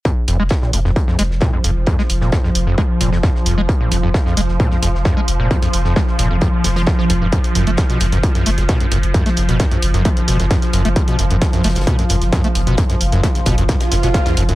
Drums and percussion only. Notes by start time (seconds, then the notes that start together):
0.05 kick, closed hi-hat
0.28 closed hi-hat, open hi-hat
0.49 kick, snare, closed hi-hat
0.62 snare
0.73 closed hi-hat, open hi-hat
0.85 snare
0.96 kick, closed hi-hat
1.08 snare
1.18 snare, closed hi-hat, open hi-hat
1.31 snare
1.41 kick, snare, closed hi-hat
1.64 closed hi-hat, open hi-hat
1.87 kick, closed hi-hat
1.99 snare
2.09 closed hi-hat, open hi-hat
2.21 snare
2.32 kick, snare, closed hi-hat
2.44 snare
2.55 closed hi-hat, open hi-hat
2.78 kick, closed hi-hat
3.01 closed hi-hat, open hi-hat
3.12 snare
3.23 kick, snare, closed hi-hat
3.35 snare
3.46 closed hi-hat, open hi-hat
3.69 kick, closed hi-hat
3.91 closed hi-hat, open hi-hat
4.14 kick, snare, closed hi-hat
4.27 snare
4.37 closed hi-hat, open hi-hat
4.48 snare
4.60 kick, closed hi-hat
4.71 snare
4.82 snare, closed hi-hat, open hi-hat
4.95 snare
5.05 kick, snare, closed hi-hat
5.28 closed hi-hat, open hi-hat
5.51 kick, closed hi-hat
5.62 snare, open hi-hat
5.73 closed hi-hat, open hi-hat
5.85 snare
5.96 kick, snare, closed hi-hat
6.08 snare
6.19 closed hi-hat, open hi-hat
6.41 kick, closed hi-hat
6.64 snare, closed hi-hat, open hi-hat
6.76 snare, closed hi-hat
6.87 kick, snare, closed hi-hat
6.99 snare
7.10 closed hi-hat, open hi-hat
7.32 kick, closed hi-hat
7.44 closed hi-hat
7.55 closed hi-hat, open hi-hat
7.67 closed hi-hat
7.77 kick, snare, closed hi-hat
7.89 snare, closed hi-hat
8.00 closed hi-hat, open hi-hat
8.11 snare, closed hi-hat
8.23 kick, closed hi-hat
8.35 snare, closed hi-hat
8.46 snare, closed hi-hat, open hi-hat
8.58 snare, closed hi-hat
8.69 kick, snare, closed hi-hat
8.80 closed hi-hat
8.92 closed hi-hat, open hi-hat
9.03 closed hi-hat
9.14 kick, closed hi-hat
9.26 snare, closed hi-hat
9.37 closed hi-hat, open hi-hat
9.49 snare, closed hi-hat
9.60 kick, snare, closed hi-hat
9.71 snare, closed hi-hat
9.82 closed hi-hat, open hi-hat
9.94 closed hi-hat
10.05 kick, closed hi-hat
10.17 closed hi-hat
10.28 closed hi-hat, open hi-hat
10.40 snare, closed hi-hat
10.51 kick, snare, closed hi-hat
10.62 snare, closed hi-hat
10.73 closed hi-hat, open hi-hat
10.85 closed hi-hat
10.96 kick, closed hi-hat
11.08 closed hi-hat
11.19 closed hi-hat, open hi-hat
11.31 closed hi-hat
11.42 kick, snare, closed hi-hat
11.53 snare, closed hi-hat
11.64 snare, closed hi-hat, open hi-hat
11.69 snare, closed hi-hat
11.75 snare, closed hi-hat
11.81 snare, closed hi-hat
11.87 kick, closed hi-hat
11.99 snare, closed hi-hat
12.09 snare, closed hi-hat, open hi-hat
12.21 snare, closed hi-hat
12.32 kick, snare, closed hi-hat
12.44 closed hi-hat
12.55 closed hi-hat, open hi-hat
12.67 closed hi-hat
12.77 kick, closed hi-hat
12.89 snare, closed hi-hat
13.01 closed hi-hat, open hi-hat
13.12 snare, closed hi-hat
13.23 kick, snare, closed hi-hat
13.35 snare, closed hi-hat
13.46 kick, closed hi-hat, open hi-hat
13.58 closed hi-hat
13.69 kick, snare, closed hi-hat
13.80 snare, closed hi-hat
13.91 snare, closed hi-hat, open hi-hat
14.03 snare, closed hi-hat
14.14 kick, snare, closed hi-hat
14.26 snare, closed hi-hat
14.37 closed hi-hat, open hi-hat
14.49 closed hi-hat